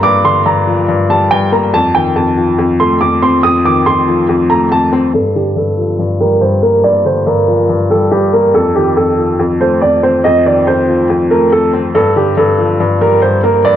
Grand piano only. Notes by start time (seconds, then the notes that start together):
0.03 D6
0.25 C6
0.46 A#5
1.10 A5
1.31 G5
1.53 A#5
1.74 A5
1.95 G5
2.16 A5
2.80 C6
3.01 D6
3.22 C6
3.43 D#6
3.65 D6
3.86 C6
4.50 A#5
4.72 A5
5.14 A4
5.36 G4
5.57 A4
6.21 A#4
6.41 C5
6.63 A#4
6.84 D5
7.06 C5
7.27 A#4
7.91 A4
8.11 G4
8.34 A#4
8.54 A4
8.75 G4
8.97 A4
9.61 C5
9.82 D5
10.03 C5
10.24 D#5
10.46 D5
10.67 C5
11.31 A#4
11.52 A4
11.95 A4
12.17 G4
12.38 A4
13.01 A#4
13.22 C5
13.44 A#4
13.65 D5